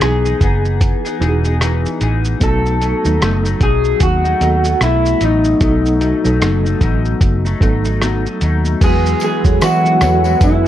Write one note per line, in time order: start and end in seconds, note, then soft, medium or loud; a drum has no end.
0.00 0.33 B1 medium
0.00 1.19 E3 medium
0.00 0.25 E3 medium
0.00 1.20 B3 medium
0.00 0.25 B3 medium
0.00 1.21 D#4 medium
0.00 0.25 D#4 medium
0.00 1.05 G#4 medium
0.00 0.24 G#4 medium
0.00 1.18 G#4 medium
0.00 2.43 G#5 medium
0.00 cross-stick medium
0.00 closed hi-hat medium
0.00 shaker medium
0.25 0.42 B3 soft
0.25 0.42 D#4 medium
0.25 0.41 G#4 medium
0.25 shaker medium
0.41 0.92 F#1 medium
0.41 1.05 E3 medium
0.41 1.06 B3 medium
0.41 1.05 D#4 medium
0.41 1.04 G#4 medium
0.41 kick medium
0.41 closed hi-hat soft
0.41 shaker soft
0.65 shaker soft
0.81 kick loud
0.81 closed hi-hat medium
0.81 shaker medium
1.05 1.21 B3 medium
1.05 1.21 D#4 soft
1.05 1.21 G#4 medium
1.05 shaker soft
1.19 1.85 E1 loud
1.19 2.26 E3 medium
1.19 1.45 E3 medium
1.19 2.27 B3 medium
1.19 1.45 B3 medium
1.19 2.27 D#4 medium
1.19 1.45 D#4 medium
1.19 1.29 F#4 medium
1.19 1.43 G#4 medium
1.19 closed hi-hat soft
1.19 shaker soft
1.29 2.31 G#4 medium
1.45 1.60 B3 soft
1.45 1.61 D#4 medium
1.45 1.61 G#4 medium
1.45 shaker medium
1.61 1.99 E3 medium
1.61 2.00 B3 medium
1.61 2.01 D#4 medium
1.61 2.02 G#4 medium
1.61 cross-stick medium
1.61 closed hi-hat medium
1.61 shaker medium
1.86 shaker medium
2.00 2.33 A1 medium
2.00 2.41 E3 medium
2.00 2.41 B3 medium
2.00 2.41 D#4 medium
2.00 2.42 G#4 medium
2.00 closed hi-hat medium
2.00 shaker soft
2.25 shaker medium
2.40 2.92 B1 loud
2.40 2.79 B2 medium
2.40 2.94 F#3 medium
2.40 2.80 F#3 medium
2.40 2.81 A3 medium
2.40 2.94 B3 medium
2.40 2.95 D#4 medium
2.40 2.82 D#4 medium
2.40 2.95 A4 medium
2.40 3.63 A4 loud
2.40 kick loud
2.40 closed hi-hat medium
2.40 shaker medium
2.66 shaker soft
2.80 3.05 B2 medium
2.80 3.05 F#3 medium
2.80 3.04 A3 medium
2.80 3.03 D#4 medium
2.80 closed hi-hat soft
2.80 shaker soft
3.04 3.18 D#2 medium
3.04 4.24 F#3 medium
3.04 3.20 F#3 soft
3.04 3.21 A3 medium
3.04 4.25 A3 medium
3.04 4.24 B3 medium
3.04 3.21 D#4 medium
3.04 4.25 D#4 medium
3.04 shaker medium
3.20 3.53 F#1 medium
3.20 3.45 B2 medium
3.20 3.45 F#3 medium
3.20 3.44 A3 medium
3.20 3.42 D#4 medium
3.20 cross-stick medium
3.20 closed hi-hat medium
3.20 shaker medium
3.44 3.60 F#3 soft
3.44 3.61 A3 soft
3.44 3.60 D#4 medium
3.44 shaker medium
3.60 3.93 B1 medium
3.60 4.24 B2 medium
3.60 4.25 F#3 medium
3.60 4.24 A3 medium
3.60 4.23 D#4 medium
3.60 3.99 G#4 loud
3.60 kick medium
3.60 closed hi-hat soft
3.60 shaker soft
3.84 shaker soft
4.00 4.33 D#2 medium
4.00 4.83 F#4 medium
4.00 kick medium
4.00 closed hi-hat medium
4.00 shaker medium
4.24 4.40 F#3 soft
4.24 4.41 A3 soft
4.24 4.41 D#4 medium
4.24 shaker medium
4.40 4.73 D#2 medium
4.40 4.65 B2 medium
4.40 5.46 F#3 medium
4.40 4.65 F#3 medium
4.40 4.64 A3 medium
4.40 5.47 B3 medium
4.40 4.63 D#4 medium
4.40 5.48 A4 medium
4.40 5.47 D#5 medium
4.40 closed hi-hat soft
4.40 shaker soft
4.64 4.80 F#3 soft
4.64 4.81 A3 soft
4.64 4.80 D#4 soft
4.64 shaker medium
4.81 5.13 B1 medium
4.81 5.19 B2 medium
4.81 5.20 F#3 medium
4.81 5.21 A3 medium
4.81 5.23 E4 medium
4.81 cross-stick medium
4.81 closed hi-hat medium
4.81 shaker medium
5.06 shaker medium
5.20 5.53 A1 medium
5.20 5.59 B2 medium
5.20 5.60 F#3 medium
5.20 5.61 A3 medium
5.20 5.61 D#4 medium
5.20 7.99 D#4 medium
5.20 closed hi-hat medium
5.20 shaker soft
5.44 shaker medium
5.60 6.12 B1 loud
5.60 5.99 B2 medium
5.60 6.14 F#3 medium
5.60 5.99 F#3 medium
5.60 6.00 A3 medium
5.60 6.14 B3 medium
5.60 6.15 D#4 medium
5.60 6.01 D#4 medium
5.60 6.15 A4 medium
5.60 kick loud
5.60 closed hi-hat medium
5.60 shaker medium
5.86 shaker soft
6.00 6.24 B2 medium
6.00 6.25 F#3 medium
6.00 6.25 A3 medium
6.00 6.23 D#4 medium
6.00 closed hi-hat soft
6.00 shaker soft
6.24 6.38 B1 medium
6.24 7.44 F#3 medium
6.24 6.40 F#3 medium
6.24 6.40 A3 medium
6.24 7.44 B3 medium
6.24 6.41 D#4 medium
6.24 7.45 D#4 medium
6.24 7.45 A4 medium
6.24 shaker medium
6.40 6.73 F#1 medium
6.40 6.65 B2 medium
6.40 6.65 F#3 medium
6.40 6.64 A3 medium
6.40 6.63 D#4 medium
6.40 cross-stick medium
6.40 closed hi-hat medium
6.40 shaker medium
6.64 6.81 F#3 soft
6.64 6.81 A3 medium
6.64 6.81 D#4 medium
6.64 shaker soft
6.81 7.13 A1 loud
6.81 7.45 B2 medium
6.81 7.46 F#3 medium
6.81 7.45 A3 medium
6.81 7.44 D#4 medium
6.81 kick medium
6.81 closed hi-hat medium
6.81 shaker medium
7.05 shaker soft
7.21 7.53 F#1 loud
7.21 kick loud
7.21 closed hi-hat medium
7.21 shaker medium
7.45 7.61 F#3 medium
7.45 7.61 A3 medium
7.45 7.61 D#4 medium
7.45 shaker medium
7.60 8.25 G#1 medium
7.60 7.85 B2 medium
7.60 8.66 F#3 medium
7.60 7.85 F#3 medium
7.60 7.85 A3 medium
7.60 8.67 B3 medium
7.60 8.67 D#4 medium
7.60 7.84 D#4 medium
7.60 8.68 A4 medium
7.60 kick medium
7.60 closed hi-hat soft
7.60 shaker soft
7.85 8.01 F#3 soft
7.85 8.01 A3 medium
7.85 8.01 D#4 medium
7.85 shaker medium
8.01 8.25 B2 medium
8.01 8.26 F#3 medium
8.01 8.26 A3 medium
8.01 8.24 D#4 medium
8.01 cross-stick medium
8.01 closed hi-hat medium
8.01 shaker medium
8.26 8.41 F#3 soft
8.26 8.42 A3 soft
8.26 8.41 D#4 medium
8.26 shaker medium
8.41 8.74 D#2 medium
8.41 8.82 B2 medium
8.41 8.82 F#3 medium
8.41 8.82 A3 medium
8.41 8.83 D#4 medium
8.41 closed hi-hat medium
8.41 shaker medium
8.65 shaker soft
8.80 9.13 E2 loud
8.80 9.34 E3 medium
8.80 9.20 E3 medium
8.80 9.35 F#3 medium
8.80 9.35 G#3 medium
8.80 9.21 G#3 medium
8.80 9.35 B3 medium
8.80 9.22 B3 medium
8.80 9.36 F#4 medium
8.80 9.23 F#4 medium
8.80 9.20 G#4 medium
8.80 9.23 G#4 loud
8.80 9.19 B4 loud
8.80 10.68 B4 medium
8.80 10.68 F#5 medium
8.80 10.68 G#5 medium
8.80 10.68 E6 loud
8.80 kick loud
8.80 closed hi-hat medium
8.80 crash loud
8.80 tambourine soft
8.80 shaker medium
9.06 shaker medium
9.20 9.59 E3 medium
9.20 9.60 G#3 medium
9.20 9.61 B3 medium
9.20 9.61 F#4 medium
9.20 closed hi-hat soft
9.20 tambourine medium
9.20 shaker medium
9.24 9.63 G#4 loud
9.44 9.58 E2 medium
9.44 9.78 E3 medium
9.44 9.78 F#3 medium
9.44 9.78 G#3 medium
9.44 9.79 B3 medium
9.44 9.79 F#4 medium
9.44 9.61 A4 medium
9.44 9.61 C#5 medium
9.44 kick loud
9.44 shaker medium
9.61 10.25 E3 medium
9.61 10.03 E3 loud
9.61 10.25 G#3 medium
9.61 10.25 B3 medium
9.61 10.23 F#4 medium
9.61 10.45 F#4 medium
9.61 10.00 B4 medium
9.61 10.00 E5 medium
9.61 cross-stick medium
9.61 closed hi-hat medium
9.61 tambourine medium
9.61 shaker medium
9.84 10.68 E3 medium
9.84 10.68 F#3 medium
9.84 10.68 G#3 medium
9.84 10.68 B3 medium
9.84 10.68 F#4 medium
9.84 shaker medium
10.01 10.33 E2 loud
10.01 10.25 A4 medium
10.01 10.25 C#5 medium
10.01 cross-stick medium
10.01 closed hi-hat medium
10.01 tambourine medium
10.01 shaker medium
10.24 10.66 G#3 soft
10.24 10.65 B3 medium
10.24 10.63 F#4 medium
10.24 tambourine soft
10.24 shaker soft
10.41 10.68 F#2 loud
10.41 10.68 E4 medium
10.41 kick loud
10.41 closed hi-hat medium
10.41 tambourine medium
10.41 shaker medium
10.64 10.68 F#4 soft